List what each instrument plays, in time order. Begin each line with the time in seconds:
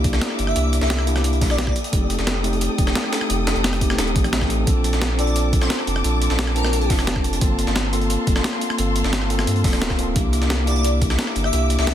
Already playing: sub bass C2, tine electric piano A#3 D4 E4 G4, string section A#3 E5 D6
0.04 kick, closed hi-hat
0.13 cross-stick, snare, closed hi-hat
0.21 snare, closed hi-hat
0.30 cross-stick
0.39 sub bass G1, closed hi-hat
0.47 digital synth lead E5, cross-stick
0.54 sub bass C2, tine electric piano A#3 D4 E4 G4, closed hi-hat
0.73 closed hi-hat
0.81 sub bass C2, digital synth lead E5, snare, closed hi-hat
0.90 snare, closed hi-hat
0.99 cross-stick
1.06 tine electric piano A#3 D4 E4 G4, closed hi-hat
1.16 cross-stick, snare, closed hi-hat
1.24 closed hi-hat
1.33 closed hi-hat
1.41 sub bass A#1, kick, snare, closed hi-hat, open hi-hat
1.50 digital synth lead D5, cross-stick, snare, closed hi-hat
1.58 snare, closed hi-hat
1.67 kick, cross-stick
1.76 string section A4 G5 D#6, closed hi-hat
1.84 closed hi-hat
1.92 sub bass F1, tine electric piano A3 C4 D#4 G4, kick, closed hi-hat
2.10 closed hi-hat
2.19 sub bass F1, snare, closed hi-hat
2.27 snare, closed hi-hat
2.43 tine electric piano A3 C4 D#4 G4, closed hi-hat
2.53 closed hi-hat
2.61 closed hi-hat
2.78 sub bass D#1, kick, closed hi-hat
2.87 cross-stick, snare, closed hi-hat
2.95 snare, closed hi-hat
3.04 cross-stick
3.13 snare, closed hi-hat
3.21 cross-stick
3.29 sub bass F1, tine electric piano A3 C4 D#4 G4, closed hi-hat
3.47 snare, closed hi-hat
3.56 sub bass F1, closed hi-hat
3.64 snare, closed hi-hat
3.73 cross-stick, closed hi-hat
3.80 tine electric piano A3 C4 D#4 G4, kick, closed hi-hat
3.90 cross-stick, snare
3.98 sub bass D#1, snare, closed hi-hat
4.07 closed hi-hat
4.16 sub bass A1, kick, closed hi-hat
4.24 cross-stick, closed hi-hat
4.32 tine electric piano A3 C4 D#4 A4, snare, closed hi-hat
4.41 kick, cross-stick, snare
4.50 closed hi-hat
4.66 sub bass A#1, string section A#3 A5 D6, tine electric piano C4 D4 F4 A4, kick, closed hi-hat
4.84 closed hi-hat
4.93 snare, closed hi-hat
5.02 snare, closed hi-hat
5.17 tine electric piano C4 D4 F4 A4, digital synth lead D5, closed hi-hat
5.27 closed hi-hat
5.36 closed hi-hat
5.53 kick, closed hi-hat
5.61 digital synth lead C5, cross-stick, snare, closed hi-hat
5.70 digital synth lead C5, snare, closed hi-hat
5.79 cross-stick
5.87 sub bass F1, closed hi-hat
5.96 cross-stick
6.03 sub bass A#1, tine electric piano C4 D4 F4 A4, closed hi-hat
6.22 closed hi-hat
6.30 sub bass A#1, snare, closed hi-hat
6.39 snare, closed hi-hat
6.47 cross-stick
6.54 tine electric piano C4 D4 F4 A5, digital synth lead A#4, closed hi-hat
6.64 cross-stick, snare, closed hi-hat
6.73 closed hi-hat
6.81 closed hi-hat
6.90 sub bass F1, kick, snare, closed hi-hat, open hi-hat
6.99 cross-stick, snare, closed hi-hat
7.07 snare, closed hi-hat
7.16 kick, cross-stick
7.24 closed hi-hat
7.33 closed hi-hat
7.40 sub bass G1, tine electric piano A#3 C4 F4 A4, string section F5 C6, kick, closed hi-hat
7.59 closed hi-hat
7.67 sub bass G1, snare, closed hi-hat
7.76 snare, closed hi-hat
7.92 tine electric piano A#3 C4 F4 A4, closed hi-hat
8.01 closed hi-hat
8.10 closed hi-hat
8.27 sub bass F1, kick, closed hi-hat
8.36 cross-stick, snare, closed hi-hat
8.44 snare, closed hi-hat
8.53 cross-stick
8.61 closed hi-hat
8.70 cross-stick
8.77 sub bass G1, tine electric piano A#3 C4 F4 A4, closed hi-hat
8.96 closed hi-hat
9.04 sub bass G1, snare, closed hi-hat
9.13 snare, closed hi-hat
9.22 cross-stick
9.28 tine electric piano A#3 C4 F4 A4, closed hi-hat
9.39 cross-stick, snare, closed hi-hat
9.47 sub bass G2, closed hi-hat
9.56 closed hi-hat
9.64 sub bass D1, kick, snare, closed hi-hat, open hi-hat
9.73 cross-stick, snare, closed hi-hat
9.81 tine electric piano A#3 C4 F4 A#4, snare, closed hi-hat
9.90 kick, cross-stick, snare
9.99 closed hi-hat
10.14 sub bass C2, tine electric piano A#3 D4 E4 G4, string section E5 D6, kick, closed hi-hat
10.33 closed hi-hat
10.42 snare, closed hi-hat
10.50 snare, closed hi-hat
10.66 tine electric piano A#3 D4 E4 G4, digital synth lead D5, closed hi-hat
10.76 closed hi-hat
10.84 closed hi-hat
11.02 kick, closed hi-hat
11.10 cross-stick, snare, closed hi-hat
11.19 snare, closed hi-hat
11.27 cross-stick
11.36 sub bass G1, closed hi-hat
11.44 digital synth lead E5, cross-stick
11.51 sub bass C2, tine electric piano A#3 D4 E4 G4, closed hi-hat
11.70 closed hi-hat
11.79 sub bass C2, digital synth lead E5, snare, closed hi-hat
11.87 snare, closed hi-hat